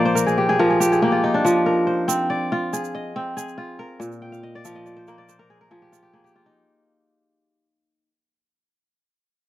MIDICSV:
0, 0, Header, 1, 3, 480
1, 0, Start_track
1, 0, Tempo, 427960
1, 1617, Time_signature, 12, 3, 24, 8
1, 10634, End_track
2, 0, Start_track
2, 0, Title_t, "Kora"
2, 0, Program_c, 0, 46
2, 0, Note_on_c, 0, 46, 97
2, 0, Note_on_c, 0, 53, 88
2, 0, Note_on_c, 0, 58, 76
2, 0, Note_on_c, 0, 74, 71
2, 0, Note_on_c, 0, 77, 73
2, 60, Note_on_c, 0, 72, 77
2, 170, Note_on_c, 0, 70, 70
2, 298, Note_on_c, 0, 68, 72
2, 422, Note_on_c, 0, 67, 69
2, 545, Note_off_c, 0, 68, 0
2, 550, Note_on_c, 0, 68, 79
2, 568, Note_off_c, 0, 77, 0
2, 653, Note_off_c, 0, 53, 0
2, 665, Note_off_c, 0, 70, 0
2, 666, Note_on_c, 0, 53, 81
2, 669, Note_on_c, 0, 70, 68
2, 786, Note_off_c, 0, 68, 0
2, 790, Note_on_c, 0, 68, 65
2, 857, Note_off_c, 0, 67, 0
2, 900, Note_on_c, 0, 67, 78
2, 1027, Note_off_c, 0, 68, 0
2, 1031, Note_on_c, 0, 68, 64
2, 1143, Note_off_c, 0, 58, 0
2, 1143, Note_off_c, 0, 67, 0
2, 1147, Note_on_c, 0, 58, 75
2, 1147, Note_on_c, 0, 67, 72
2, 1178, Note_off_c, 0, 74, 0
2, 1255, Note_on_c, 0, 65, 76
2, 1350, Note_off_c, 0, 46, 0
2, 1387, Note_on_c, 0, 63, 66
2, 1392, Note_off_c, 0, 72, 0
2, 1506, Note_on_c, 0, 62, 75
2, 1609, Note_off_c, 0, 53, 0
2, 1622, Note_on_c, 0, 53, 86
2, 1858, Note_off_c, 0, 70, 0
2, 1862, Note_on_c, 0, 70, 61
2, 2095, Note_on_c, 0, 72, 59
2, 2332, Note_on_c, 0, 60, 81
2, 2561, Note_off_c, 0, 68, 0
2, 2578, Note_on_c, 0, 74, 62
2, 2645, Note_off_c, 0, 63, 0
2, 2731, Note_off_c, 0, 67, 0
2, 2821, Note_off_c, 0, 65, 0
2, 2826, Note_on_c, 0, 65, 80
2, 3063, Note_on_c, 0, 68, 66
2, 3290, Note_off_c, 0, 70, 0
2, 3304, Note_on_c, 0, 75, 63
2, 3311, Note_off_c, 0, 58, 0
2, 3372, Note_off_c, 0, 62, 0
2, 3372, Note_off_c, 0, 74, 0
2, 3427, Note_off_c, 0, 72, 0
2, 3538, Note_off_c, 0, 60, 0
2, 3543, Note_on_c, 0, 60, 82
2, 3772, Note_off_c, 0, 68, 0
2, 3776, Note_on_c, 0, 68, 72
2, 4007, Note_off_c, 0, 65, 0
2, 4011, Note_on_c, 0, 65, 69
2, 4247, Note_off_c, 0, 53, 0
2, 4251, Note_on_c, 0, 70, 68
2, 4483, Note_on_c, 0, 46, 92
2, 4505, Note_off_c, 0, 75, 0
2, 4731, Note_on_c, 0, 79, 73
2, 4798, Note_off_c, 0, 68, 0
2, 4846, Note_on_c, 0, 77, 68
2, 4971, Note_on_c, 0, 75, 69
2, 5107, Note_on_c, 0, 74, 78
2, 5212, Note_off_c, 0, 77, 0
2, 5215, Note_on_c, 0, 53, 82
2, 5217, Note_on_c, 0, 77, 76
2, 5326, Note_off_c, 0, 75, 0
2, 5331, Note_on_c, 0, 75, 68
2, 5398, Note_off_c, 0, 74, 0
2, 5450, Note_on_c, 0, 74, 65
2, 5562, Note_off_c, 0, 60, 0
2, 5569, Note_on_c, 0, 72, 76
2, 5679, Note_off_c, 0, 70, 0
2, 5695, Note_on_c, 0, 58, 75
2, 5698, Note_on_c, 0, 70, 65
2, 5709, Note_off_c, 0, 65, 0
2, 5776, Note_off_c, 0, 79, 0
2, 5806, Note_off_c, 0, 74, 0
2, 5811, Note_on_c, 0, 74, 70
2, 5878, Note_off_c, 0, 75, 0
2, 5927, Note_off_c, 0, 72, 0
2, 5932, Note_on_c, 0, 72, 65
2, 6043, Note_off_c, 0, 70, 0
2, 6048, Note_on_c, 0, 70, 72
2, 6169, Note_on_c, 0, 68, 63
2, 6286, Note_off_c, 0, 70, 0
2, 6290, Note_on_c, 0, 70, 69
2, 6337, Note_off_c, 0, 77, 0
2, 6391, Note_off_c, 0, 53, 0
2, 6403, Note_on_c, 0, 53, 83
2, 6404, Note_off_c, 0, 68, 0
2, 6408, Note_on_c, 0, 68, 67
2, 6527, Note_on_c, 0, 67, 68
2, 6643, Note_on_c, 0, 65, 73
2, 6754, Note_off_c, 0, 67, 0
2, 6758, Note_on_c, 0, 67, 67
2, 6825, Note_off_c, 0, 68, 0
2, 6876, Note_off_c, 0, 58, 0
2, 6880, Note_on_c, 0, 58, 75
2, 6880, Note_on_c, 0, 68, 66
2, 6995, Note_off_c, 0, 67, 0
2, 6999, Note_on_c, 0, 67, 66
2, 7054, Note_off_c, 0, 74, 0
2, 7107, Note_off_c, 0, 46, 0
2, 7124, Note_off_c, 0, 65, 0
2, 7129, Note_on_c, 0, 65, 72
2, 7245, Note_on_c, 0, 63, 64
2, 7264, Note_off_c, 0, 72, 0
2, 7433, Note_off_c, 0, 53, 0
2, 7718, Note_off_c, 0, 70, 0
2, 8410, Note_off_c, 0, 68, 0
2, 8583, Note_off_c, 0, 67, 0
2, 8826, Note_off_c, 0, 65, 0
2, 9044, Note_off_c, 0, 58, 0
2, 9065, Note_off_c, 0, 63, 0
2, 10634, End_track
3, 0, Start_track
3, 0, Title_t, "Drums"
3, 189, Note_on_c, 9, 82, 57
3, 301, Note_off_c, 9, 82, 0
3, 314, Note_on_c, 9, 82, 20
3, 426, Note_off_c, 9, 82, 0
3, 915, Note_on_c, 9, 82, 61
3, 1027, Note_off_c, 9, 82, 0
3, 1038, Note_on_c, 9, 82, 17
3, 1151, Note_off_c, 9, 82, 0
3, 1642, Note_on_c, 9, 82, 54
3, 1754, Note_off_c, 9, 82, 0
3, 2348, Note_on_c, 9, 82, 63
3, 2460, Note_off_c, 9, 82, 0
3, 3071, Note_on_c, 9, 82, 61
3, 3183, Note_off_c, 9, 82, 0
3, 3189, Note_on_c, 9, 82, 19
3, 3301, Note_off_c, 9, 82, 0
3, 3791, Note_on_c, 9, 82, 66
3, 3903, Note_off_c, 9, 82, 0
3, 3909, Note_on_c, 9, 82, 18
3, 4021, Note_off_c, 9, 82, 0
3, 4503, Note_on_c, 9, 82, 64
3, 4615, Note_off_c, 9, 82, 0
3, 4620, Note_on_c, 9, 82, 21
3, 4732, Note_off_c, 9, 82, 0
3, 4861, Note_on_c, 9, 82, 21
3, 4973, Note_off_c, 9, 82, 0
3, 5217, Note_on_c, 9, 82, 69
3, 5329, Note_off_c, 9, 82, 0
3, 5453, Note_on_c, 9, 82, 18
3, 5565, Note_off_c, 9, 82, 0
3, 5690, Note_on_c, 9, 82, 20
3, 5802, Note_off_c, 9, 82, 0
3, 5933, Note_on_c, 9, 82, 58
3, 6045, Note_off_c, 9, 82, 0
3, 6656, Note_on_c, 9, 82, 57
3, 6768, Note_off_c, 9, 82, 0
3, 7024, Note_on_c, 9, 82, 19
3, 7136, Note_off_c, 9, 82, 0
3, 10634, End_track
0, 0, End_of_file